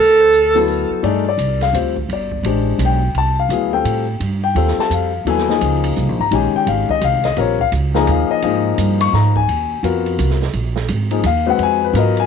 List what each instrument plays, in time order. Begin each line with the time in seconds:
Already playing: upright bass D2, alto saxophone A4
0.33 closed hi-hat
0.55 grand piano F#3 B3 E4 A4, open hi-hat
0.68 open hi-hat
0.90 muted upright bass stroke
1.03 upright bass G2, grand piano A3 D#4 G#4 D5, ride
1.28 grand piano D5
1.38 upright bass C2, hi-hat pedal, ride
1.61 grand piano F5, snare, ride
1.73 upright bass D2, grand piano G3 C4 F4 C5, hi-hat pedal, ride
1.96 kick
2.09 upright bass G1, ride
2.13 grand piano D5
2.31 kick
2.43 upright bass A1, grand piano G#3 D4 G4 C5, ride
2.79 upright bass B1, hi-hat pedal, ride
2.85 grand piano G5
3.14 upright bass C2, grand piano A5, ride
3.39 grand piano F5
3.49 upright bass D2, grand piano F#3 B3 E4 G#4, hi-hat pedal, ride
3.73 grand piano G3 C4 F4 A4 G5
3.85 upright bass A2, hi-hat pedal, ride
4.20 upright bass G2, ride
4.44 grand piano G5
4.55 upright bass D#2, grand piano G3 C4 F4 A4, ride
4.68 snare
4.78 grand piano A5, muted upright bass stroke, snare
4.90 upright bass F2, grand piano F5, hi-hat pedal, ride
5.25 upright bass D#2, grand piano F#3 B3 E4 A4, ride
5.30 grand piano G#5
5.38 snare
5.48 grand piano F3 A#3 D#4 G#4, snare
5.61 upright bass C#2, hi-hat pedal, ride
5.84 ride
5.96 upright bass C2, hi-hat pedal
6.09 upright bass A#1
6.19 upright bass G#1, grand piano A#5
6.31 upright bass A#1, grand piano D#3 G#3 C#4 G4 G#5, ride
6.54 grand piano G5, muted upright bass stroke
6.67 upright bass G#1, grand piano F5, ride
6.89 grand piano D#5, muted upright bass stroke, kick
7.01 upright bass C2, grand piano F5, hi-hat pedal, ride
7.24 grand piano D#5, snare, ride
7.37 upright bass A#1, grand piano G3 C4 F4 A#4 C#5, ride
7.59 grand piano F5, kick
7.72 upright bass C#2, hi-hat pedal, ride
7.94 grand piano F3 A#3 D#4 G#4 A#5, snare
8.07 upright bass D#2, grand piano F5, hi-hat pedal, ride
8.30 grand piano D#5, muted upright bass stroke
8.42 upright bass G#2, grand piano F3 A#3 D#4 G#4, ride
8.78 upright bass G2, hi-hat pedal, ride
9.00 grand piano C#6, ride
9.13 upright bass G#2, grand piano A#5, snare
9.36 grand piano G#5, kick
9.48 upright bass D#2, ride
9.83 upright bass F2, grand piano B3 F4 F#4 A#4, hi-hat pedal, ride
10.06 ride
10.19 upright bass C2, hi-hat pedal, ride
10.30 snare
10.42 snare
10.53 upright bass A#1, ride
10.76 snare
10.88 upright bass G#1, hi-hat pedal, ride
11.11 grand piano F3 A#3 D#4 G#4, ride
11.24 upright bass D#2, grand piano F5, hi-hat pedal, ride
11.46 grand piano G#3 C4 F#4 B4 F#5
11.58 upright bass F2, ride
11.63 grand piano G#5
11.84 grand piano B4
11.93 upright bass G#2, grand piano F#3 B3 F4 A#4, hi-hat pedal, ride
11.99 grand piano D#5
12.17 grand piano G#5, ride